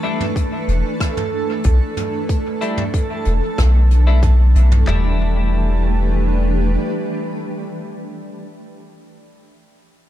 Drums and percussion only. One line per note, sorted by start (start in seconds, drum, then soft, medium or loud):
0.20 mid tom medium
0.36 kick loud
0.36 closed hi-hat medium
0.68 closed hi-hat soft
1.00 kick loud
1.00 cross-stick medium
1.00 closed hi-hat medium
1.17 mid tom medium
1.64 kick loud
1.64 closed hi-hat medium
1.97 closed hi-hat soft
1.97 mid tom medium
2.29 kick loud
2.29 closed hi-hat medium
2.61 closed hi-hat soft
2.78 mid tom medium
2.94 kick loud
2.94 closed hi-hat medium
3.25 closed hi-hat soft
3.58 kick loud
3.58 cross-stick medium
3.58 closed hi-hat medium
3.91 closed hi-hat soft
4.23 kick loud
4.23 closed hi-hat medium
4.23 mid tom medium
4.56 closed hi-hat soft
4.72 mid tom medium
4.87 snare loud
4.87 clap medium
4.87 floor tom loud